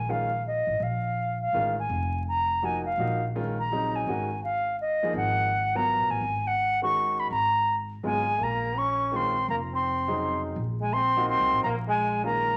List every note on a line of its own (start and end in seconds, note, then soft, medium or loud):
0.00 0.63 A#1 medium
0.00 0.12 G#5 medium
0.09 0.29 D#3 soft
0.09 0.30 G#3 soft
0.09 0.29 C#4 soft
0.09 0.30 F4 medium
0.09 0.45 F5 medium
0.47 0.85 D#5 medium
0.67 0.79 A1 medium
0.80 1.49 A#1 medium
0.80 1.41 F5 medium
1.42 1.75 F5 medium
1.53 1.87 A1 medium
1.53 1.74 D#3 medium
1.53 1.74 G#3 medium
1.53 1.75 C#4 medium
1.53 1.74 F4 medium
1.79 2.23 G#5 medium
1.89 2.94 F1 medium
2.28 2.67 A#5 medium
2.62 2.83 F3 soft
2.62 2.83 A#3 soft
2.62 2.83 D#4 soft
2.62 2.83 F#4 medium
2.62 2.85 G#5 medium
2.86 3.25 F5 medium
2.97 4.02 A#1 medium
2.97 3.19 F3 medium
2.97 3.19 A#3 soft
2.97 3.19 D#4 medium
2.97 3.19 F#4 medium
3.35 3.55 D#3 medium
3.35 3.55 G#3 medium
3.35 3.55 C#4 medium
3.35 3.56 F4 medium
3.59 3.97 A#5 medium
3.72 4.07 C#3 medium
3.72 4.07 F#3 soft
3.72 4.07 C4 medium
3.72 4.07 D#4 medium
3.96 4.43 G#5 medium
4.06 5.11 G#1 medium
4.06 4.28 D#3 medium
4.06 4.28 G#3 soft
4.06 4.28 C#4 soft
4.06 4.28 F#4 medium
4.44 4.77 F5 medium
4.81 5.13 D#5 medium
5.03 5.49 F3 medium
5.03 5.49 A#3 medium
5.03 5.49 D#4 medium
5.03 5.49 G#4 medium
5.14 5.94 G#1 medium
5.14 5.78 F#5 loud
5.75 6.21 F#3 medium
5.75 6.21 B3 medium
5.75 6.21 F4 medium
5.75 6.21 A#4 medium
5.75 6.12 A#5 medium
5.97 6.08 A#1 medium
6.09 6.20 A1 medium
6.09 6.49 G#5 medium
6.21 7.26 G#1 medium
6.47 6.83 F#5 medium
6.82 7.29 D#3 medium
6.82 7.29 G#3 medium
6.82 7.29 C#4 soft
6.82 7.29 F#4 medium
6.82 7.21 C#6 loud
7.20 7.30 B5 medium
7.30 7.99 G#1 medium
7.30 7.75 A#5 loud
8.03 8.37 G#1 medium
8.03 8.24 C#3 medium
8.03 8.24 F#3 soft
8.03 8.42 G#3 medium
8.03 8.25 B3 soft
8.03 8.25 F4 medium
8.03 8.45 G#5 medium
8.40 9.44 A#1 medium
8.40 8.78 A#3 medium
8.40 8.80 A#5 medium
8.77 9.14 C#4 medium
8.77 9.18 C#6 medium
9.12 9.33 D#3 medium
9.12 9.33 G#3 medium
9.12 9.49 C4 medium
9.12 9.33 C#4 medium
9.12 9.33 F4 medium
9.16 9.49 C6 medium
9.48 10.53 F1 medium
9.48 9.60 A#3 medium
9.48 9.56 A#5 medium
9.73 10.40 C4 medium
9.73 10.41 C6 medium
10.08 10.54 C#3 medium
10.08 10.54 F#3 medium
10.08 10.54 C4 medium
10.08 10.54 D#4 medium
10.56 11.37 A#1 medium
10.81 10.95 G#3 medium
10.81 10.95 G#5 medium
10.93 11.28 C4 medium
10.93 11.29 C6 loud
11.16 11.63 A#3 medium
11.16 11.63 D#4 medium
11.16 11.63 F4 medium
11.16 11.63 F#4 medium
11.29 11.62 C4 medium
11.29 11.63 C6 loud
11.40 11.51 C2 medium
11.52 11.64 A1 medium
11.64 12.56 A#1 medium
11.64 11.76 A#3 medium
11.64 11.70 A#5 loud
11.88 12.21 G#3 medium
11.88 12.22 G#5 medium
12.23 12.57 D#3 medium
12.23 12.57 G#3 medium
12.23 12.57 A#3 medium
12.23 12.57 C#4 medium
12.23 12.57 F4 medium
12.23 12.57 A#5 loud